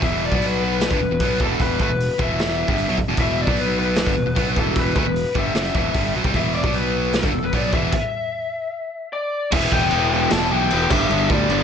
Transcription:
0.02 E1 E2 B2 E3 E5, kick, open hi-hat
0.25 D5
0.32 B1 B2 F#3 B3, kick
0.42 open hi-hat
0.46 B4
0.65 B4
0.81 snare, open hi-hat
0.91 G1 G2 D3, kick
1.00 E1 E2 B2
1.10 E1 E2 B2
1.20 B1 B2 F#3 B3, kick, open hi-hat
1.40 E1 E2 B2 E3 A4, kick
1.60 B4, kick, open hi-hat
1.80 D2 D3 A3 B4, kick
1.89 E1 E2 B2
2.00 open hi-hat
2.19 E1 E2 B2 E3 E5, kick
2.39 snare, open hi-hat
2.68 G1 G2 D3 G3, kick
2.78 open hi-hat
2.88 B1 B2 F#3
2.98 muted fingered electric bass stroke, muted overdriven electric guitar stroke, muted distorted electric guitar stroke, kick
3.06 E1 E2 B2
3.17 E1 E2 B2 E3 E5, kick, open hi-hat
3.42 D5
3.47 B1 B2 F#3 B3, kick
3.57 B4, open hi-hat
3.79 B4
3.96 snare, open hi-hat
4.06 G1 G2 D3, kick
4.17 E1 E2 B2
4.26 E1 E2 B2
4.36 B1 B2 F#3 B3, kick, open hi-hat
4.56 E1 E2 B2 E3 A4, kick
4.76 B4, kick, open hi-hat
4.95 D2 D3 A3 B4, kick
5.05 E1 E2 B2
5.16 open hi-hat
5.35 G1 G2 D3 G3 E5, kick
5.54 F#1 F#2 C#3 F#3, snare, open hi-hat
5.74 E1 E2 B2 E3, kick
5.94 G1 G2 D3 G3, kick, open hi-hat
6.14 B1 B2 F#3
6.24 C2 C3 G3, kick
6.34 E1 E2 B2 E3 E5, kick, open hi-hat
6.55 D5
6.64 B1 B2 F#3 B3, kick
6.73 B4, open hi-hat
7.13 A4, snare, open hi-hat
7.23 G1 G2 D3, kick
7.33 E1 E2 B2
7.42 E1 E2 B2 B4
7.53 B1 B2 F#3 B3 D5, kick, open hi-hat
7.73 E1 E2 B2 E3 E5, kick
7.92 kick, crash
9.13 D5
9.52 E1 E2 B2 E3 B3 E4 G4 E5, kick, crash
9.72 E1 E2 B2 E3 G5, kick
9.91 E1 E2 B2 E3, crash
10.13 E2 B2 E3 G5
10.30 E1 E2 B2 A5, snare, crash
10.35 E3
10.51 B1 E2 B2 E3 B3 E4 G4 G5
10.70 E1 E2 B2 E3 B3 E4, crash
10.75 G4
10.90 G1 G2 D3 G3 B3 D4 E5, kick, snare, crash
10.95 G4
11.10 G1 G2 D3 G3, crash
11.30 D2 G2 D3 G3 D5, kick
11.49 G1 G2 D3 G3, crash

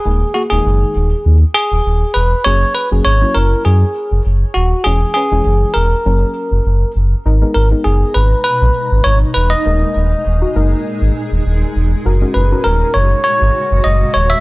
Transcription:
Already playing: G#4
0.05 D#1 D#3 G#3 A#3 G#4
0.34 A#3 F#4 G#4
0.50 D#1 D#3 G#3 A#3 D#4 G#4
0.66 F#1
0.96 D#1
1.26 D#2
1.54 G#4
1.72 D#1
1.86 D#1
2.14 E1 B4
2.44 F#1 F#3 A#3 C#4 G#4 C#5
2.74 B4
2.91 F#1 F#3 A#3 C#4 G#4
3.05 G#1 C#5
3.21 F#3 A#3 C#4 E4
3.35 F#1 A#4
3.65 F#2 G#4
4.12 F#1
4.26 F#1
4.54 D#1 F#4
4.84 E1 E3 G#3 C#4 G#4
5.14 C#4 G#4 B4
5.32 E1 E3 G#3 C#4 G#4
5.46 F#1
5.74 E1 A#4
6.05 F#1 F#3 A#3 C#4 A#4
6.51 F#1
6.66 F#1
6.96 F#1
7.26 G#1 B2 G#3 D#4 A#4 A#5
7.41 G#3 B3 D#4 A#4
7.54 G#1 A#4
7.71 G#3 B3 D#4 A#4
7.84 F#1 G#4
8.14 G#1 B4
8.44 B4
8.62 A#1
8.92 G#1
9.04 G#1 C#5
9.34 E1 B4
9.50 D#5
9.66 D#1 A#2 G#3 A#3 D#4 G#4 A#4
9.96 D#1
10.26 D#1
10.41 D#4 F#4
10.55 F#1 G#3 A#3 D#4 A#4
11.02 G#1
11.32 D#1
11.46 D#1
11.76 E1
12.05 F#1 A#2 C#3 F#4 A#4
12.21 G#3 C#4 F#4 A#4
12.34 F#1 B4
12.52 G#3 C#4 F#4 A#4
12.64 D#1 A#4
12.94 F#1 C#5
13.24 C#5
13.41 G#1
13.71 F#1
13.84 F#1 D#5
14.14 D#1 C#5
14.30 E5

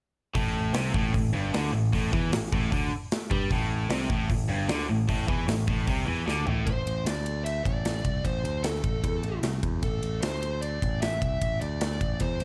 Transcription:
0.34 A1 A2, kick, open hi-hat
0.74 C2 C3, snare, open hi-hat
0.94 A1 A2, kick
1.14 A1 A2, kick, open hi-hat
1.33 G1 G2
1.53 D2 D3, snare, open hi-hat
1.73 A1 A2
1.93 A1 A2, kick, open hi-hat
2.13 E2 E3, kick
2.32 A1 A2, snare, open hi-hat
2.53 A1 A2, kick
2.72 D2 D3, kick, open hi-hat
3.12 snare, open hi-hat
3.31 G2 G3, kick
3.50 A1 A2, kick, open hi-hat
3.89 C2 C3, snare, open hi-hat
4.09 A1 A2, kick
4.30 A1 A2, kick, open hi-hat
4.49 G1 G2
4.69 D2 D3, snare, open hi-hat
4.89 A1 A2
5.08 A1 A2, kick, open hi-hat
5.28 E2 E3, kick
5.47 A1 A2, snare, open hi-hat
5.68 A1 A2, kick
5.87 C2 C3, kick, open hi-hat
6.07 E2 E3
6.26 D2 D3, snare
6.47 A1 A2, floor tom
6.66 A1 C5, kick, ride
6.86 A1, ride
7.05 D2 D5, snare, ride
7.26 ride
7.44 E5, ride
7.64 A1 D5, kick, ride
7.85 snare, ride
8.05 C2, kick, ride
8.24 A1 C5, kick, ride
8.44 D2, ride
8.64 A4, snare, ride
8.84 A1, kick, ride
9.04 E2, kick, ride
9.23 A1, ride
9.42 C2, snare, ride
9.63 E2, kick, ride
9.83 A1 A4, kick, ride
10.02 A1, ride
10.22 D2 C5, snare, ride
10.43 ride
10.61 D5, ride
10.82 A1, kick, ride
11.02 E5, snare, ride
11.22 C2 E5, kick, ride
11.41 A1, kick, ride
11.61 D2 D5, ride
11.81 snare, ride
12.01 A1, kick, ride
12.20 E2 C5, kick, ride
12.40 A1, ride

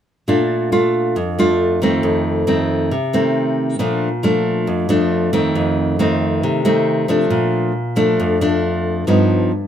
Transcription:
0.28 A#2 A3 D4 F4
0.72 A3 D4 F4
1.16 F2
1.39 A3 D4 F4
1.82 D#3 A3 C4
2.03 F2
2.47 D#3 A3 C4
2.91 C3
3.13 D#3 A3 C4
3.79 A#2 F3 A3 D4
4.23 F3 A3 D4
4.67 F2
4.89 F3 A3 D4
5.33 D#3 A3 C4
5.55 F2
5.99 D#3 A3 C4
6.43 C3
6.65 D#3 A3 C4
7.08 F3 A3 D4
7.30 A#2
7.96 F3 A3 D4
8.20 F2
8.41 F3 A3 D4
9.07 G2 F3 B3 D#4

